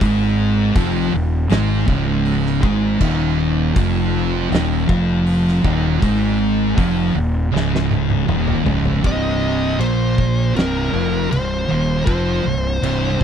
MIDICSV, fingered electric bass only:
0, 0, Header, 1, 2, 480
1, 0, Start_track
1, 0, Tempo, 750000
1, 8, Time_signature, 4, 2, 24, 8
1, 3369, Tempo, 756620
1, 8428, End_track
2, 0, Start_track
2, 0, Title_t, "Fingered electric bass"
2, 0, Program_c, 0, 33
2, 7, Note_on_c, 0, 32, 97
2, 460, Note_off_c, 0, 32, 0
2, 481, Note_on_c, 0, 29, 110
2, 706, Note_off_c, 0, 29, 0
2, 727, Note_on_c, 0, 27, 83
2, 949, Note_off_c, 0, 27, 0
2, 966, Note_on_c, 0, 32, 97
2, 1188, Note_off_c, 0, 32, 0
2, 1204, Note_on_c, 0, 25, 89
2, 1658, Note_off_c, 0, 25, 0
2, 1685, Note_on_c, 0, 32, 103
2, 1908, Note_off_c, 0, 32, 0
2, 1925, Note_on_c, 0, 27, 105
2, 2380, Note_off_c, 0, 27, 0
2, 2407, Note_on_c, 0, 29, 104
2, 2862, Note_off_c, 0, 29, 0
2, 2890, Note_on_c, 0, 27, 100
2, 3112, Note_off_c, 0, 27, 0
2, 3132, Note_on_c, 0, 29, 106
2, 3585, Note_off_c, 0, 29, 0
2, 3609, Note_on_c, 0, 27, 105
2, 3831, Note_off_c, 0, 27, 0
2, 3853, Note_on_c, 0, 32, 94
2, 4304, Note_off_c, 0, 32, 0
2, 4331, Note_on_c, 0, 29, 103
2, 4551, Note_off_c, 0, 29, 0
2, 4564, Note_on_c, 0, 27, 83
2, 4788, Note_off_c, 0, 27, 0
2, 4805, Note_on_c, 0, 25, 95
2, 5260, Note_off_c, 0, 25, 0
2, 5283, Note_on_c, 0, 27, 90
2, 5507, Note_off_c, 0, 27, 0
2, 5521, Note_on_c, 0, 25, 101
2, 5747, Note_off_c, 0, 25, 0
2, 5767, Note_on_c, 0, 24, 96
2, 6222, Note_off_c, 0, 24, 0
2, 6242, Note_on_c, 0, 34, 92
2, 6699, Note_off_c, 0, 34, 0
2, 6723, Note_on_c, 0, 24, 91
2, 6949, Note_off_c, 0, 24, 0
2, 6964, Note_on_c, 0, 29, 91
2, 7189, Note_off_c, 0, 29, 0
2, 7207, Note_on_c, 0, 24, 80
2, 7431, Note_off_c, 0, 24, 0
2, 7451, Note_on_c, 0, 27, 89
2, 7673, Note_off_c, 0, 27, 0
2, 7688, Note_on_c, 0, 29, 86
2, 7911, Note_off_c, 0, 29, 0
2, 7925, Note_on_c, 0, 24, 77
2, 8150, Note_off_c, 0, 24, 0
2, 8163, Note_on_c, 0, 24, 101
2, 8389, Note_off_c, 0, 24, 0
2, 8409, Note_on_c, 0, 24, 93
2, 8428, Note_off_c, 0, 24, 0
2, 8428, End_track
0, 0, End_of_file